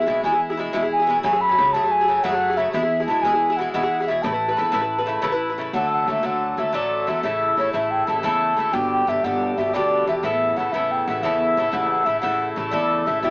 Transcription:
Already playing: E5
0.01 G#3 E4
0.06 B1 B2 G#3 E4 G#4
0.23 E2 B2 G#3 E4 G#4 G#5
0.32 G#3 E4 G#4
0.50 G#3 E4 G#4
0.57 B2 G#3 E4 G#4
0.73 E2 B2 G#3 E4 G#4 E5
0.82 G#3 E4 G#4
0.92 G#5
1.00 G#3 E4 G#4
1.07 B2 G#3 E4 G#4
1.23 F#2 C#3 F#3 A3 G#4 G#5
1.33 F#3 A3 G#4
1.41 B5
1.49 F#3 A3 G#4
1.58 C#2 C#3 F#3 A3 G#4
1.73 F#2 C#3 F#3 A3 G#4 A5
1.83 F#3 A3 G#4
1.91 G#5
2.01 F#3 A3 G#4
2.08 C#3 F#3 A3 G#4
2.17 G#5
2.23 F#2 C#3 F#3 A3 G#4 F#5
2.32 F#3 A3 G#4
2.50 F#3 A3 G#4
2.57 C#3 F#3 A3 G#4 E5
2.73 E2 B2 G#3 E4 G#4 E5
2.83 G#3 E4 G#4
3.00 G#3 E4 G#4
3.07 B1 B2 G#3 E4 A5
3.11 G#4
3.22 E2 B2 G#3 E4 G#5
3.26 G#4
3.33 G#3 E4 G#4
3.50 G#3 E4 G#4
3.57 B2 G#3 F#5
3.61 E4 G#4
3.73 E2 B2 G#3 E4 G#4 F#5
3.83 G#3 E4 G#4
4.00 G#3 E4 G#4
4.07 B2 G#3 E4 E5
4.12 G#4
4.22 A1 C#3 A3 E4 B4 A5
4.32 A3 E4 B4
4.48 A3 B4
4.57 E2 C#3 A3 E4 B4
4.72 A1 C#3 A3 E4 B4
4.82 A3 E4 B4
4.98 A3 B4
5.06 C#3 A3 E4 B4
5.22 A1 C#3 A3 E4 B4
5.32 A3 E4 B4
5.50 A3 E4 B4
5.58 C#3 A3 E4 B4
5.73 D2 D3 F#3 A3 A4 F#5
5.93 F#5
6.07 D2 D3 F#3 A3 A4 E5
6.23 D2 D3 F#3 A3 A4 F#5
6.57 D2 D3 F#3 A3 A4 E5
6.73 A1 D3 F#3 A3 A4 D5
7.07 E2 D3 F#3 A3 A4 E5
7.23 A1 C#3 A3 E4 A4 E5
7.57 A1 C#3 A3 E4 A4 C#5
7.73 A1 C#3 A3 E4 A4 E5
7.91 G5
8.07 A1 C#3 A3 E4 A4 A5
8.23 E2 C#3 A3 E4 A4 A5
8.57 D2 C#3 A3 E4 A4
8.73 G1 B2 D3 D4 G4 G5
8.92 G5
9.07 G1 B2 D3 D4 G4 E5
9.24 G1 B2 D3 D4 G4 F#5
9.58 G1 B2 D3 D4 G4 E5
9.73 D2 B2 D3 D4 G4 D5
10.07 E2 B2 D3 D4 G4 E5
10.23 A1 C#3 B3 E4 A4 E5
10.56 A1 C#3 B3 E4 A4 F#5
10.72 A1 C#3 B3 E4 A4 E5
10.91 G5
11.07 A1 C#3 B3 E4 A4 F#5
11.23 E2 C#3 B3 E4 A4 E5
11.57 A1 C#3 B3 E4 A4
11.72 A1 C#3 A3 E4 A4 F#5
11.91 F#5
12.06 A1 C#3 A3 E4 A4 E5
12.21 A1 C#3 A3 E4 A4 F#5
12.56 A1 C#3 A3 E4 A4
12.71 E2 C#3 A3 E4 A4 D5
13.06 A1 C#3 A3 E4 A4 E5
13.23 E1 B2 G3 E4 G4 E5

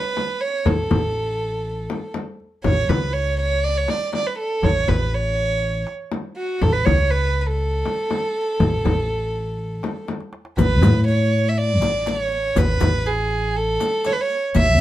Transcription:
Already playing: B4
0.17 darbuka tek, frame drum
0.41 C#5
0.65 A1 A4, darbuka dum, frame drum
0.90 A1, darbuka dum, frame drum
1.28 darbuka ka
1.90 darbuka tek, frame drum
2.14 darbuka tek, frame drum
2.40 darbuka ka
2.64 A1 C#5, frame drum, darbuka dum
2.89 C#2 B4, frame drum
3.13 C#5
3.41 C#5
3.64 D5
3.78 C#5
3.88 D5, darbuka tek, frame drum
4.13 D5, darbuka tek, frame drum
4.27 B4
4.39 A4
4.62 A1 C#5, darbuka dum, frame drum
4.87 A1 B4, darbuka dum, frame drum
5.15 C#5
5.87 darbuka tek
6.12 darbuka tek, frame drum
6.37 F#4
6.61 A1 A4, frame drum, darbuka dum
6.73 B4
6.85 C#2 C#5, frame drum, darbuka dum
7.11 B4
7.41 B4
7.47 A4
7.86 darbuka tek, frame drum
8.11 darbuka tek, frame drum
8.60 A1, darbuka dum, frame drum
8.72 darbuka ka
8.84 A1, darbuka dum, frame drum
9.22 darbuka ka
9.34 darbuka ka
9.59 darbuka ka
9.83 darbuka tek, frame drum
10.08 darbuka tek, frame drum
10.21 darbuka ka
10.33 darbuka tek
10.45 darbuka ka
10.57 A1 B4, riq, darbuka dum, frame drum
10.81 A2, riq, darbuka dum, frame drum
11.08 C#5, riq
11.32 darbuka ka
11.49 E5
11.58 D5
11.81 A1, riq, darbuka tek, frame drum
12.06 C#5, riq, darbuka tek, frame drum
12.32 riq
12.56 A1 B4, riq, darbuka dum, frame drum
12.80 A1, riq, darbuka dum, frame drum
13.06 G#4, riq
13.30 darbuka ka
13.57 A4
13.80 riq, darbuka tek, frame drum
14.04 C#5, riq, darbuka tek, frame drum
14.13 B4
14.21 C#5
14.30 riq
14.54 A1 E5, riq, darbuka dum, frame drum

